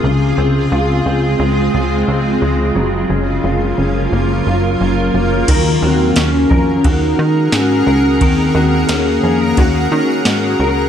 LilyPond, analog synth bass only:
\new Staff \with { instrumentName = "Analog synth bass" } { \clef bass \time 4/4 \key ges \lydian \tempo 4 = 88 des,8 des,8 des,8 des,8 des,8 des,8 des,8 des,8 | ges,,8 ges,,8 ges,,8 ges,,8 ges,,8 ges,,8 ges,,8 ges,,8 | ees,8 ees,8 ees,8 f,8 ees,8 ees8 aes,8 des,8 | ees,8 ees,8 ees,8 f,8 ees,8 ees8 aes,8 des,8 | }